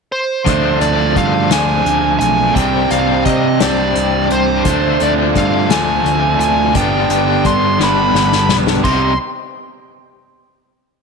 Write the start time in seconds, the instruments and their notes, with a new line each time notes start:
0.12 lead electric guitar C5
0.46 fingered electric bass D2, distorted electric guitar D3 F3 A3 D4, string machine C4 G#4 D5 F5, kick, closed hi-hat
0.80 fingered electric bass D2, lead electric guitar D5, closed hi-hat
1.16 fingered electric bass G2, lead electric guitar F5, kick, closed hi-hat
1.50 fingered electric bass D2, distorted electric guitar D3 F3 A3 D4, lead electric guitar G#5, snare, closed hi-hat
1.85 fingered electric bass D2, closed hi-hat
2.20 fingered electric bass B1, lead electric guitar G#5, closed hi-hat
2.54 fingered electric bass C2, distorted electric guitar C3 G3 C4 D4, string machine G4 C5 G5, lead electric guitar G5, kick, closed hi-hat
2.90 fingered electric bass C2, lead electric guitar F5, closed hi-hat
3.25 fingered electric bass C3, lead electric guitar D#5, kick, closed hi-hat
3.60 fingered electric bass C2, distorted electric guitar C3 G3 C4 D4, lead electric guitar D5, snare, closed hi-hat
3.95 fingered electric bass C2, closed hi-hat
4.30 fingered electric bass C2, lead electric guitar C5, closed hi-hat
4.65 fingered electric bass D2, distorted electric guitar D3 F3 A3 D4, string machine F4 D5 G#5, kick, closed hi-hat
5.00 fingered electric bass D2, lead electric guitar D5, closed hi-hat
5.36 fingered electric bass G2, lead electric guitar F5, kick, closed hi-hat
5.70 fingered electric bass D2, distorted electric guitar D3 F3 A3 D4, lead electric guitar G#5, snare, closed hi-hat
6.05 fingered electric bass D2, closed hi-hat
6.39 fingered electric bass D2, lead electric guitar G#5, closed hi-hat
6.75 fingered electric bass G1, distorted electric guitar G2 D3 G3 B3 D4, string machine B3 G4 D5 G5, lead electric guitar G5, kick, closed hi-hat
7.09 fingered electric bass G1, lead electric guitar G5, closed hi-hat
7.44 fingered electric bass G2, lead electric guitar C6, kick, closed hi-hat
7.79 fingered electric bass G1, distorted electric guitar G2 D3 G3 B3 D4, snare
7.83 lead electric guitar B5
8.14 fingered electric bass G1, snare
8.32 snare
8.49 fingered electric bass B1, snare
8.67 snare
8.84 fingered electric bass C2, distorted electric guitar C3 G3 C4 D#4, string machine C3 C4 G4 D#5 G5, lead electric guitar C6, kick, crash